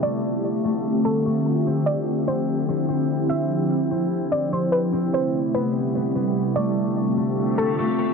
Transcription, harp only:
\new Staff \with { instrumentName = "Harp" } { \time 4/4 \key d \dorian \tempo 4 = 147 a4. a4 a8 a4 | c'4. c'4 c'8 c'4 | c'4. c'4 c'8 c'4 | c'4. b4 b8 b4 |
a4. a4 a8 a4 | }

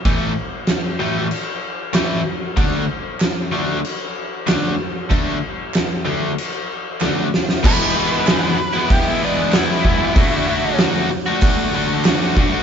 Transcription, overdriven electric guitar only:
\new Staff \with { instrumentName = "Overdriven electric guitar" } { \time 4/4 \key d \lydian \tempo 4 = 95 <a, e a>8 r4 <a, e a>8 r4 <a, e a>8 r8 | <d a d'>8 r4 <d a d'>8 r4 <d a d'>8 r8 | <d a d'>8 r4 <d a d'>8 r4 <d a d'>8 r8 | <e gis b e'>16 <gis b e'>16 <e gis b e'>8 <e gis b e'>16 <gis b e'>8 <gis b e'>8. <e gis b e'>8 <e gis b e'>16 <gis b e'>16 <e gis b e'>16 <gis b e'>16 |
<d a d' fis'>16 <a d' fis'>16 <d a d' fis'>8 <d a d' fis'>16 <a d' fis'>8 <a d' fis'>8. <d a d' fis'>8 <d a d' fis'>16 <a d' fis'>16 <d a d' fis'>16 <a d' fis'>16 | }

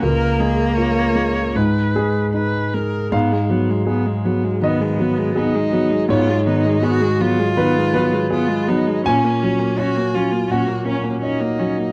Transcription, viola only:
\new Staff \with { instrumentName = "Viola" } { \time 4/4 \key gis \dorian \tempo 4 = 81 ais'8 gis'8 cis''4 b'4 b'8 ais'8 | b16 gis16 b16 gis16 b16 gis16 b16 gis16 b16 gis16 b16 gis16 b16 gis16 b16 gis16 | b16 gis16 b16 gis16 b16 gis16 b16 gis16 b16 gis16 b16 gis16 b16 gis16 b16 gis16 | cis'16 ais16 cis'16 ais16 cis'16 ais16 cis'16 ais16 cis'16 ais16 cis'16 ais16 cis'16 ais16 cis'16 ais16 | }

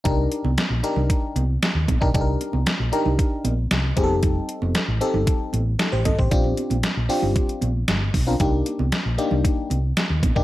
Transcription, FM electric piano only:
\new Staff \with { instrumentName = "FM electric piano" } { \time 4/4 \key c \dorian \tempo 4 = 115 << { r1 | r1 | r2. <ees' a'>16 <g' c''>16 <a' ees''>16 <g' c''>16~ | <g' c''>16 r2. r8. |
r1 | } \\ { <d' ees' g' bes'>8. r8. <d' ees' g' bes'>4~ <d' ees' g' bes'>16 r4 <d' ees' g' bes'>16 | <d' ees' g' a' bes'>8. r8. <d' ees' g' bes'>4~ <d' ees' g' bes'>16 r8. <c' ees' g' aes' a'>8~ | <c' ees' g' aes' a'>4 r8 <c' ees' g' a'>4~ <c' ees' g' a'>16 r4 r16 | <c' d' f' g'>8. r8. <c' d' f' g'>4~ <c' d' f' g'>16 r4 <c' d' f' bes'>16 |
<bes d' ees' g'>8. r8. <bes d' ees' g'>4~ <bes d' ees' g'>16 r4 <bes d' ees' g'>16 | } >> }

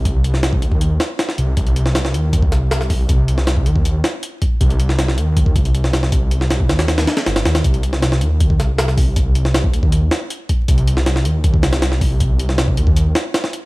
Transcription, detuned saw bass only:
\new Staff \with { instrumentName = "Detuned saw bass" } { \clef bass \time 4/4 \key c \minor \tempo 4 = 158 c,4. ees,4 r4 c,8 | c,4. ees,4 c,4.~ | c,4. ees,4 r4. | c,4. ees,4 c,4.~ |
c,4. ees,4 r8 g,,8 ees,8 | c,4. ees,4 c,4.~ | c,4. ees,4 r4. | c,4. ees,4 c,4.~ |
c,4. ees,4 r4. | }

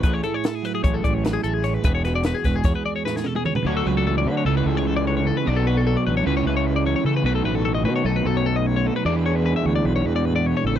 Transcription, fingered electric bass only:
\new Staff \with { instrumentName = "Fingered electric bass" } { \clef bass \time 9/8 \key a \major \tempo 4. = 100 a,,8 r4. a,,8 a,,4 a,,4 | e,,4. e,,8 e,16 r2 r16 | d,8 cis,4 d8 cis,8 cis,2 | b,,4. a,,8 cis,8 cis,4. cis8 |
b,,8 a,,4 b,8 b,,8 b,,2 | e,4. d,8 b,,8 e,4. a,,8 | }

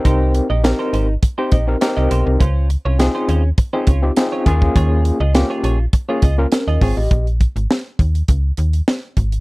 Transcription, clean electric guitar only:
\new Staff \with { instrumentName = "Clean electric guitar" } { \time 4/4 \key des \lydian \tempo 4 = 102 <ees' g' c''>8 r16 <ees' g' ees''>16 r16 <ees' g' c''>16 <ees' g' c''>16 r8 <ees' g' c''>16 <ees' g' ees''>16 r8 <ees' g' ees''>16 <ees' g' c''>16 r16 | <des' f' c''>8 r16 <des' f' des''>16 r16 <des' f' c''>16 <des' f' c''>16 r8 <des' f' c''>16 <des' f' des''>16 r8 <des' f' des''>16 <f' aes' des''>16 r16 | <f' aes' des''>8 r16 <f' aes' ees''>16 r16 <f' aes' des''>16 <f' aes' des''>16 r8 <f' aes' des''>16 <f' aes' ees''>16 r8 <f' aes' ees''>16 <f' aes' des''>16 r16 | r1 | }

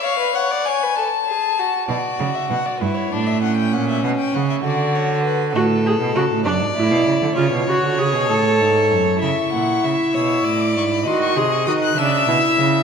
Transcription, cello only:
\new Staff \with { instrumentName = "Cello" } { \clef bass \time 6/8 \key b \minor \tempo 4. = 65 r2. | b,8 cis8 b,8 g,8 a,4 | ais,8 b,8 cis8 d4. | a,8. b,16 cis16 a,16 fis,16 gis,16 a,16 b,16 cis16 d16 |
cis16 b,16 cis16 d16 cis16 b,16 a,8 gis,8 fis,8 | cis8 ais,8 cis8 b,8 a,8 gis,8 | dis8 bis,8 dis8 cis8 b,8 cis8 | }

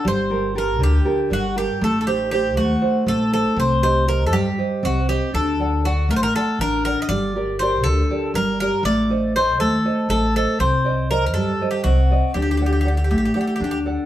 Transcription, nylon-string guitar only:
\new Staff \with { instrumentName = "Nylon-string guitar" } { \time 7/8 \key g \minor \tempo 4 = 120 g8 <g' a' bes'>8 <g' a' bes'>8 d8 <g' a' bes'>8 g8 <g' a' bes'>8 | a8 <ees' a' c''>8 <ees' a' c''>8 a8 <ees' a' c''>8 a8 <ees' a' c''>8 | c'8 <g' c'' ees''>8 <g' c'' ees''>8 g8 <g' c'' ees''>8 c'8 <g' c'' ees''>8 | d'8 <a' d'' fis''>8 <a' d'' fis''>8 a8 <a' d'' fis''>8 d'8 <a' d'' fis''>8 |
g8 <g' bes' d''>8 <g' bes' d''>8 d8 <g' bes' d''>8 g8 <g' bes' d''>8 | a8 <a' c'' ees''>8 <a' c'' ees''>8 a8 <a' c'' ees''>8 a8 <a' c'' ees''>8 | c'8 <c'' d'' ees''>8 <c'' d'' ees''>8 g8 <c'' d'' ees''>8 c'8 <c'' d'' ees''>8 | d'8 <a' d'' fis''>8 <a' d'' fis''>8 a8 <a' d'' fis''>8 d'8 <a' d'' fis''>8 | }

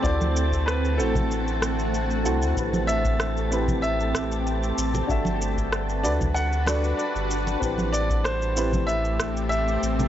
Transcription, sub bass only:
\new Staff \with { instrumentName = "Sub bass" } { \clef bass \time 4/4 \key a \dorian \tempo 4 = 95 d,4. a,,2 c,16 d,16 | a,,2.~ a,,8 a,,8 | g,,4. d,4. r16 g,,8. | a,,2.~ a,,8 a,,8 | }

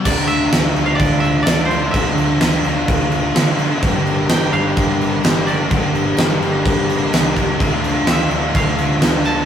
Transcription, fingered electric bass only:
\new Staff \with { instrumentName = "Fingered electric bass" } { \clef bass \time 4/4 \key d \minor \tempo 4 = 127 d,4 d,8 d,8 d,4 d,4 | d,8 d,8 d,8 d,8 d,4 d4 | g,,4 g,,8 g,,8 g,,4 g,,4 | g,,8 g,,8 g,,8 g,,8 g,,4 cis,4 |
d,4 d,8 d,8 d,4 d,4 | }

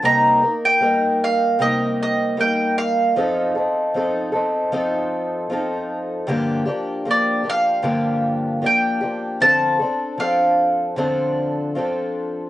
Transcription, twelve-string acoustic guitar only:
\new Staff \with { instrumentName = "Twelve-string acoustic guitar" } { \time 4/4 \key g \minor \tempo 4 = 77 <c g bes ees' bes'>8 <bes ees' bes'>8 <g bes ees' bes'>4 <c g bes ees' bes'>4 <g bes ees' bes'>4 | <f c' ees' a'>8 <c' ees' a'>8 <f c' ees' a'>8 <c' ees' a'>8 <f c' ees' a'>4 <f c' ees' a'>4 | <g, d f bes d' g'>8 <f bes d' g'>8 <f bes d' g'>8 <f bes d' g'>8 <g, d f bes d' g'>4 <f bes d' g'>8 <f bes d' g'>8 | <d f c' d' a'>8 <c' d' a'>8 <f c' d' a'>4 <d f c' d' a'>4 <f c' d' a'>4 | }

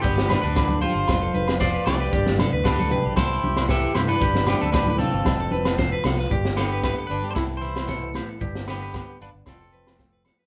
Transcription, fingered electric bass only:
\new Staff \with { instrumentName = "Fingered electric bass" } { \clef bass \time 4/4 \key g \mixolydian \tempo 4 = 115 g,,8. d,4 g,,16 f,,8 f,,4 c,8 | g,,8. d,4 b,,16 c,8 c,4 g,8 | g,,8. d,4 g,,16 f,,8 f,,4 c,8 | g,,4. g,,16 g,16 c,2 |
g,,4. g,,16 g,,16 f,,2 | }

